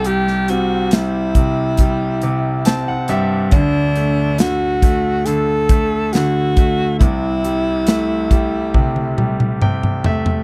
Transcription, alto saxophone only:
X:1
M:4/4
L:1/8
Q:1/4=69
K:Clyd
V:1 name="Alto saxophone"
G F E4- E z | D2 F2 A2 F2 | E6 z2 |]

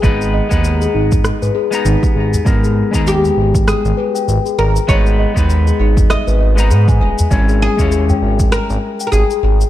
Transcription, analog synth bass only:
X:1
M:4/4
L:1/16
Q:"Swing 16ths" 1/4=99
K:G#m
V:1 name="Analog synth bass" clef=bass
G,,,2 z D,,2 z G,,,2 z G,,, z2 G,,, z G,,, z | G,,,2 z D,,2 z G,,,2 z G,,, z2 G,,, z G,,, z | G,,,2 z D,,2 z G,,,2 z G,,,3 G,,2 D,,, z | G,,,2 z D,,2 z G,,,2 z G,,, z2 G,,, z G,,, z |]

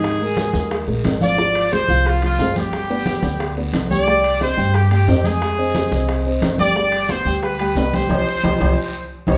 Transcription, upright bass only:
X:1
M:4/4
L:1/8
Q:1/4=179
K:Cm
V:1 name="Upright bass" clef=bass
A,,3 E,,2 B,,, A,,,2- | A,,,3 C,,3 G,,,2- | G,,,3 D,,3 C,,2- | C,,3 G,,3 F,,2- |
F,,3 C,,3 G,,,2- | G,,,3 D,,3 C,,2 | C,, z C,, C,, z3 C,, |]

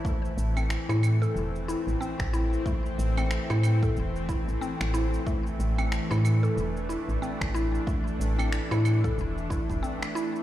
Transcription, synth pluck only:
X:1
M:4/4
L:1/16
Q:"Swing 16ths" 1/4=92
K:Am
V:1 name="Synth pluck"
A, z2 C2 E2 A z2 E2 C2 E2 | A, z2 C2 E2 A z2 E2 C2 E2 | A, z2 C2 E2 A z2 E2 C2 E2 | A, z2 C2 E2 A z2 E2 C2 E2 |]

